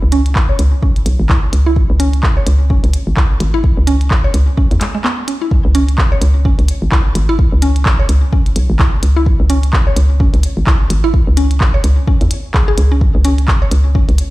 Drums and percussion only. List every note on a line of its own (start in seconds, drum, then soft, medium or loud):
0.12 closed hi-hat medium
0.26 closed hi-hat soft
0.36 kick loud
0.36 clap medium
0.59 closed hi-hat medium
0.83 kick loud
0.96 closed hi-hat soft
1.06 closed hi-hat medium
1.29 kick loud
1.29 clap medium
1.53 closed hi-hat medium
1.76 kick loud
2.00 closed hi-hat medium
2.13 closed hi-hat soft
2.23 kick loud
2.23 clap medium
2.47 closed hi-hat medium
2.70 kick loud
2.84 closed hi-hat soft
2.94 closed hi-hat medium
3.17 kick loud
3.17 clap medium
3.40 closed hi-hat medium
3.64 kick loud
3.87 closed hi-hat medium
4.01 closed hi-hat soft
4.11 kick loud
4.11 clap medium
4.34 closed hi-hat medium
4.58 kick loud
4.71 closed hi-hat soft
4.81 clap medium
4.81 closed hi-hat medium
5.04 clap medium
5.28 closed hi-hat medium
5.51 kick loud
5.75 closed hi-hat medium
5.89 closed hi-hat soft
5.98 kick loud
5.98 clap medium
6.22 closed hi-hat medium
6.45 kick loud
6.59 closed hi-hat soft
6.68 closed hi-hat medium
6.92 kick loud
6.92 clap medium
7.15 closed hi-hat medium
7.39 kick loud
7.62 closed hi-hat loud
7.76 closed hi-hat soft
7.86 kick loud
7.86 clap loud
8.09 closed hi-hat medium
8.33 kick loud
8.46 closed hi-hat soft
8.56 closed hi-hat medium
8.79 kick loud
8.79 clap medium
9.03 closed hi-hat medium
9.26 kick loud
9.50 closed hi-hat loud
9.63 closed hi-hat soft
9.73 kick loud
9.73 clap medium
9.97 closed hi-hat medium
10.20 kick loud
10.34 closed hi-hat soft
10.43 closed hi-hat medium
10.67 kick loud
10.67 clap medium
10.90 closed hi-hat medium
11.14 kick loud
11.37 closed hi-hat loud
11.51 closed hi-hat soft
11.61 kick loud
11.61 clap medium
11.84 closed hi-hat medium
12.07 kick loud
12.21 closed hi-hat soft
12.31 closed hi-hat loud
12.54 kick loud
12.54 clap medium
12.78 closed hi-hat medium
13.01 kick loud
13.25 closed hi-hat medium
13.38 closed hi-hat soft
13.48 kick loud
13.48 clap medium
13.71 closed hi-hat medium
13.95 kick loud
14.09 closed hi-hat soft
14.18 closed hi-hat medium